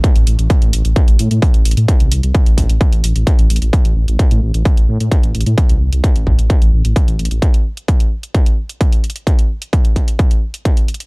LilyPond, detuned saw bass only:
\new Staff \with { instrumentName = "Detuned saw bass" } { \clef bass \time 4/4 \key a \minor \tempo 4 = 130 r16 a,,16 a,,16 a,,16 r16 a,16 a,,16 a,,16 r16 a,,16 a,16 a,16 r16 a,,16 a,,16 a,16 | r16 c,16 c,16 c,16 r16 a,,16 a,,16 a,,16 r16 a,,16 a,,16 a,,16 r16 a,,16 a,,16 a,,16 | r16 a,,16 a,,16 a,,16 r16 a,16 a,,16 a,,16 r16 a,,16 a,16 a,16 r16 a,,16 a,,16 a,16 | r16 c,16 c,16 c,16 r16 a,,16 a,,16 a,,16 r16 a,,16 a,,16 a,,16 r16 a,,16 a,,16 a,,16 |
r1 | r1 | }